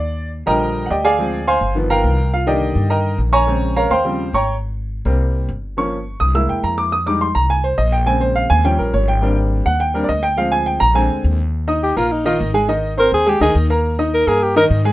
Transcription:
<<
  \new Staff \with { instrumentName = "Grand piano" } { \time 4/4 \key ees \major \tempo 4 = 209 d''4 r8 <bes' ees'' g'' bes''>4. <g' d'' ees'' ges'' g''>8 <aes' d'' f'' aes''>8~ | <aes' d'' f'' aes''>4 <c'' f'' aes'' c'''>4 r8 <ais' f'' g'' ais''>4. | \key c \minor <f' f''>8 <g' d'' ees'' g''>4. <bes' ees'' g'' bes''>4 r8 <des'' aes'' bes'' des'''>8~ | <des'' aes'' bes'' des'''>4 <bes' des'' f'' bes''>8 <c'' f'' g'' c'''>4. <des'' g'' bes'' des'''>8. r16 |
r1 | des'''4. ees'''8 e'''8 g''8 bes''8 d'''8 | ees'''8 d'''8 c'''8 bes''8 aes''8 c''8 ees''8 g''8 | aes''8 c''8 f''8 aes''8 g''8 bes'8 des''8 g''8~ |
g''8 r4 fis''8 g''8 bes'8 <d'' ees''>8 g''8 | f''8 aes''8 g''8 bes''8 aes''4 r4 | \key ees \major r8 <ees' ees'' ees'''>4 <bes bes' bes''>4 <ees ees' ees''>4 <aes aes' aes''>8 | <ees ees' ees''>4 <c' c'' c'''>4 <aes aes' aes''>8 <ees ees' ees''>4 <bes bes' bes''>8~ |
<bes bes' bes''>8 <ees' ees'' ees'''>4 <bes bes' bes''>4 <ees ees' ees''>4 <aes aes' aes''>8 | }
  \new Staff \with { instrumentName = "Grand piano" } { \clef bass \time 4/4 \key ees \major r4. <d f g>4. r4 | <f aes c'>8 r4. <dis f b>4. r8 | \key c \minor r8 <d ees bes>2.~ <d ees bes>8 | <des aes c'>4. r8 <des f g c'>8 r4. |
r4. <g bes c'>4. r4 | <f bes des'>8 r4. <aes bes e'>2 | r8 <g aes ees'>8 r2. | <des aes c'>2 <f g des'>2 |
<g bes c' d'>4. r4 <g bes c' d'>8 r4 | <f aes c'>4. r8 <d aes c'>4. r8 | \key ees \major r1 | r1 |
r1 | }
  \new Staff \with { instrumentName = "Alto saxophone" } { \time 4/4 \key ees \major r1 | r1 | \key c \minor r1 | r1 |
r1 | r1 | r1 | r1 |
r1 | r1 | \key ees \major r4 g'8 f'8 ees'8 f'8 r4 | r4 bes'8 aes'8 g'8 aes'8 r4 |
r4 bes'8 aes'8 g'8 bes'8 r4 | }
  \new Staff \with { instrumentName = "Upright bass" } { \clef bass \time 4/4 \key ees \major ees,4. bes,,4. d,4~ | d,4. g,,4. c,4~ | \key c \minor c,4. g,4. bes,,4~ | bes,,4. ees,4. aes,,4~ |
aes,,4. c,4. g,,4~ | g,,4. c,4 e,8 f,4~ | f,4. c,4. bes,,4~ | bes,,4. ees,4 bes,,8 aes,,4~ |
aes,,4. ees,4. d,4~ | d,4. bes,,4 d,8 ees,4~ | \key ees \major ees,4. bes,,4. aes,,4~ | aes,,4. ees,4 d,8 ees,4~ |
ees,4. g,4. aes,4 | }
>>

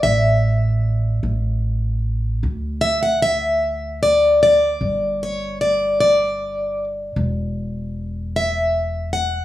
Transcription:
<<
  \new Staff \with { instrumentName = "Steel-string acoustic guitar" } { \time 6/8 \key d \major \tempo 4. = 51 e''2~ e''8 r8 | r8 e''16 fis''16 e''4 d''8 d''8~ | d''8 cis''8 d''8 d''4 r8 | r4. e''4 fis''8 | }
  \new Staff \with { instrumentName = "Upright bass" } { \clef bass \time 6/8 \key d \major a,,4. a,,4. | d,2. | g,,2. | e,,2. | }
>>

